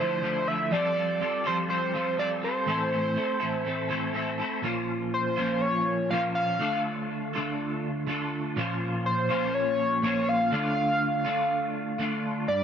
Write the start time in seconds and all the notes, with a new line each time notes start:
Already playing: E4
0.00 D3 F3 A3 C5
0.22 D3 F3 A3 E4
0.46 F3 A3 E4 E5
0.71 F3 G3 C4 F4 A4 D5
0.94 C4 F4 A4
1.20 G3 C4 F4 A4
1.44 F3 G3 C4 F4 A4 C5
1.68 G3 C4 F4 A4 C5
1.93 F3 G3 C4 F4 A4
2.17 G3 C4 F4 A4 D5
2.41 C4 F4 A4 C5
2.66 A2 E3 A3 C4 E4 A4
2.91 A3 C4 E4 A4
3.15 A3 C4 E4 A4
3.40 A2 E3 A3 C4 E4 A4
3.65 A3 C4 E4 A4
3.89 A2 E3 A3 C4 E4 A4
4.13 A3 C4 E4 A4
4.38 A3 C4 E4 A4
4.62 A#2 F3 A#3 C#4 F4 C5
5.14 C5
5.36 A#2 F3 A#3 C#4 F4 C5
5.61 C#5
6.10 A#2 F3 A#3 C#4 F4 C5 F5
6.35 F5
6.59 D3 A3 D4 F4 A4
7.33 D3 A3 D4 F4 A4
8.07 D3 A3 D4 F4 A4
8.56 A#2 F3 A#3 C#4 F4 C5
9.06 C5
9.29 A#2 F3 A#3 C#4 F4 C5
9.54 C#5
10.02 A#2 F3 A#3 C#4 F4 C5 C#5
10.29 F5
10.51 D3 A3 D4 F4
11.25 D3 A3 D4 F4
11.98 D3 A3 D4 F4
12.48 G2 D5